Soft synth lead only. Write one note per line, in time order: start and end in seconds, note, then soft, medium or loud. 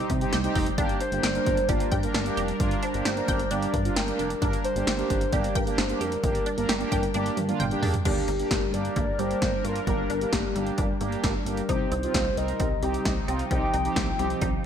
1.01 1.70 C5 loud
1.68 2.16 D5 loud
2.14 2.60 A#4 medium
2.83 3.52 C5 loud
3.51 3.98 D5 loud
3.96 4.42 A#4 medium
4.64 5.34 C5 loud
5.33 5.57 D5 loud
5.55 5.80 A#4 loud
5.78 6.02 C5 loud
6.01 7.82 A#4 medium
7.83 7.93 G#4 medium
8.06 8.75 G4 loud
8.74 8.96 D5 loud
8.96 9.21 D5 loud
9.19 9.66 C5 loud
9.64 9.87 A#4 medium
9.87 10.34 A#4 loud
10.33 10.78 G4 medium
11.23 11.45 A#4 medium
11.46 11.71 A#4 medium
11.69 11.91 C5 loud
11.92 12.39 C5 loud
12.37 13.06 D#5 loud
13.28 14.60 G5 loud